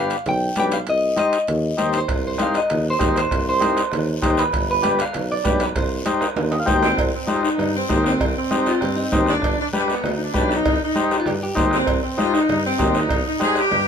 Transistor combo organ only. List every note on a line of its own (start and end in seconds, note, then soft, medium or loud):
0.00 0.17 D4 medium
0.00 0.17 G4 medium
0.00 0.17 B4 medium
0.57 0.78 D4 medium
0.57 0.78 G4 medium
0.57 0.78 B4 medium
1.16 1.38 D#4 medium
1.16 1.38 G4 medium
1.16 1.39 C5 medium
1.77 1.99 D#4 medium
1.77 2.00 G4 medium
1.77 2.00 C5 medium
2.38 2.60 D#4 medium
2.38 2.60 G4 medium
2.38 2.61 C5 medium
2.99 3.21 D#4 medium
2.99 3.21 G4 medium
2.99 3.21 C5 medium
3.60 3.82 D#4 medium
3.60 3.82 G4 medium
3.60 3.83 C5 medium
4.22 4.44 D#4 medium
4.22 4.44 G4 medium
4.22 4.44 C5 medium
4.82 5.04 D4 medium
4.82 5.05 G4 medium
4.82 5.05 B4 medium
5.44 5.66 D4 medium
5.44 5.66 G4 medium
5.44 5.66 B4 medium
6.05 6.27 D#4 medium
6.05 6.27 G4 medium
6.05 6.28 C5 medium
6.51 6.59 D#5 medium
6.59 6.67 F5 medium
6.66 6.88 D#4 medium
6.66 6.88 G4 medium
6.66 6.88 C5 medium
6.66 6.95 G5 medium
7.27 7.49 D#4 medium
7.27 7.50 G4 medium
7.27 7.50 C5 medium
7.89 8.11 D#4 medium
7.89 8.11 G4 medium
7.89 8.11 C5 medium
8.51 8.72 D#4 medium
8.51 8.73 G4 medium
8.51 8.73 C5 medium
9.12 9.34 D#4 medium
9.12 9.34 G4 medium
9.12 9.34 C5 medium
9.73 9.95 D4 medium
9.73 9.95 G4 medium
9.73 9.95 B4 medium
10.33 10.56 D4 medium
10.33 10.56 G4 medium
10.33 10.56 B4 medium
10.95 11.17 D#4 medium
10.95 11.17 G4 medium
10.95 11.17 C5 medium
11.55 11.78 D#4 medium
11.55 11.78 G4 medium
11.55 11.78 C5 medium
12.18 12.39 D#4 medium
12.18 12.39 G4 medium
12.18 12.40 C5 medium
12.78 13.00 D#4 medium
12.78 13.01 G4 medium
12.78 13.01 C5 medium
13.40 13.62 D#4 medium
13.40 13.62 G4 medium
13.40 13.62 C5 medium